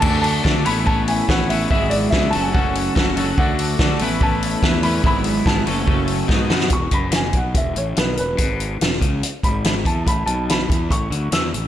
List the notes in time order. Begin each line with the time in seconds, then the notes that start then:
Already playing: A4 F#5
0.00 D2 D3 A3 D4 F#4 A4 D5 A5 D6, kick, crash
0.22 A5, open hi-hat
0.43 D3 A3 D4 F#4 A4 D5, kick, snare
0.64 A1 A2 E3 A3 B3 C#4 E4 B4 C#5 E5 B5, open hi-hat
0.85 A2 E3 A3 B3 C#4 E4 B4 C#5 A5, kick
1.08 G#5, open hi-hat
1.28 A1 A2 E3 A3 B3 C#4 E4 B4 C#5 F#5, kick, snare
1.49 A2 E3 A3 B3 C#4 E4 B4 C#5 E5, open hi-hat
1.70 G#1 G#2 E3 F#3 G#3 B3 F#4 G#4 E5 F#5, kick
1.74 E4
1.90 D5, open hi-hat
2.10 C#2 G#2 E3 F#3 G#3 B3 E4 F#4 G#4 E5, kick, snare
2.30 F#2 C#3 F#3 C#4 F#4 A5, open hi-hat
2.35 F#1 A3 A4 C#5 C#6
2.42 G#5
2.53 F#2 C#3 F#3 A3 C#4 F#4 A4 F#5, kick
2.75 open hi-hat
2.95 F#1 F#2 C#3 F#3 A3 C#4 F#4 A4, kick, snare
3.00 F#4
3.16 F#2 C#3 F#3 C#4 F#4 A4, open hi-hat
3.21 A3
3.37 D2 D3 A3 D4 F#4 A4 D5 F#5 D6, kick
3.59 open hi-hat
3.79 D3 A3 D4 F#4 A4, kick, snare
3.99 A1 A2 E3 A3 B3 C#4 E4 B4 C#5 E5 B5, open hi-hat
4.20 A2 E3 A3 B3 C#4 E4 B4 A5, kick
4.43 open hi-hat
4.62 E2 A2 E3 A3 B3 C#4 E4 B4, kick, snare
4.83 A2 E3 A3 B3 C#4 E4 B4 B5, open hi-hat
5.02 G#1 G#2 E3 F#3 B3 E4 G#4 F#5, kick
5.06 G#4 B5
5.24 open hi-hat
5.45 G#1 G#2 E3 F#3 B3 E4 G#4 A5, kick, snare
5.65 F#1 F#2 C#3 F#3 A3 C#4 A4 C#5 C#6, open hi-hat
5.70 A4
5.86 F#2 C#3 F#3 A3 C#4, kick
5.91 A4
6.08 open hi-hat
6.27 G#2 B2 F#3 B3 D#4 B4 D#5 D#6, kick, snare
6.32 F#4
6.48 F#2 B2 F#3 B3 D#4, snare
6.54 F#4
6.60 snare
6.69 E1 E2 C#6, kick, closed hi-hat
6.91 F#1 F#2 B5, kick, closed hi-hat
7.12 G#5, snare, closed hi-hat
7.33 B1 B2, kick, closed hi-hat
7.37 F#5
7.54 E1 E2 E5, kick, closed hi-hat
7.75 A1 A2 C#5, closed hi-hat
7.96 B1 B2 B4, snare, closed hi-hat
8.15 E2 A#4, closed hi-hat
8.19 E1 B4
8.37 G#1 G#2, kick, closed hi-hat
8.60 closed hi-hat
8.80 E1 E2, snare, closed hi-hat
8.92 snare
9.01 C#2 C#3, kick, closed hi-hat
9.22 muted clean electric guitar stroke, muted fingered electric bass stroke, closed hi-hat
9.43 G#1 G#2 B5, kick, closed hi-hat
9.64 snare, closed hi-hat
9.85 E2 E3 A5, kick, closed hi-hat
10.05 A1 A2 B5, kick, closed hi-hat
10.26 B1 B2 A5, closed hi-hat
10.49 B5, snare, closed hi-hat
10.68 E2 E3, kick, closed hi-hat
10.90 A1 A2 C#6, kick, closed hi-hat
11.11 D2 D3, closed hi-hat
11.32 E2 E3 E6, snare, closed hi-hat
11.53 A1 A2, closed hi-hat